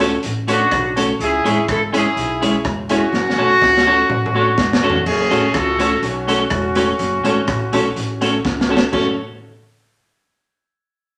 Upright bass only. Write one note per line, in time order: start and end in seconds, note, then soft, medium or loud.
0.00 0.16 C#2 loud
0.24 0.65 A1 loud
0.71 1.12 B1 loud
1.20 1.41 C#2 loud
1.45 1.65 A1 medium
1.68 2.09 G#1 medium
2.16 2.57 B1 loud
2.65 3.06 E1 loud
3.13 3.34 F#1 loud
3.38 3.58 B1 medium
3.62 4.03 C#2 medium
4.09 4.51 A1 medium
4.58 4.99 E1 loud
5.06 5.27 F#1 loud
5.31 5.51 A1 medium
5.55 5.96 C#2 medium
6.02 6.43 B1 medium
6.51 6.92 E1 medium
6.99 7.21 F#1 loud
7.25 7.44 G#1 medium
7.48 7.69 A1 medium
7.73 7.93 B1 loud
7.96 8.37 A1 medium
8.45 8.85 C#2 medium
8.93 9.16 F#1 medium